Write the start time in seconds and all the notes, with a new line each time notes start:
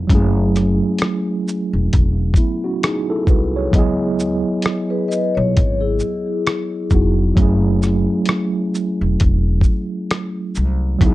0.07 F#1 F#3 G#3 C#4, kick, closed hi-hat
0.13 A3 E4 G#4
0.56 cross-stick, closed hi-hat, shaker
0.99 cross-stick, closed hi-hat
1.48 shaker
1.73 E1
1.93 E1, kick, closed hi-hat
2.34 E4, kick, closed hi-hat, shaker
2.39 B3
2.64 C#4 F#4
2.83 D#4 G#4, cross-stick, closed hi-hat
3.10 E4 A4
3.27 C2 F#4 B4, kick, shaker
3.56 G#4 C#5
3.71 C#2 F#3 B3, kick, closed hi-hat
3.75 E4 G#4 D#5
4.20 shaker
4.62 cross-stick, closed hi-hat
4.90 G#4 B4
5.08 B4 D#5, shaker
5.35 B1 C#5
5.57 G#1, kick, closed hi-hat
5.80 E4 G#4
6.00 shaker
6.47 cross-stick, closed hi-hat
6.91 F1 F#3 B3 D#4 E4, kick, shaker
6.95 F#4
7.35 F#1 F#3 A3 C#4, kick, closed hi-hat
7.41 E4 G#4
7.83 cross-stick, shaker
8.26 cross-stick, closed hi-hat
8.75 shaker
9.01 E1
9.20 E1, kick, closed hi-hat
9.61 kick, shaker
10.11 cross-stick, closed hi-hat
10.55 C2, shaker
10.99 C#2 F#3 B3 D#4, kick, closed hi-hat
11.04 E4 G#4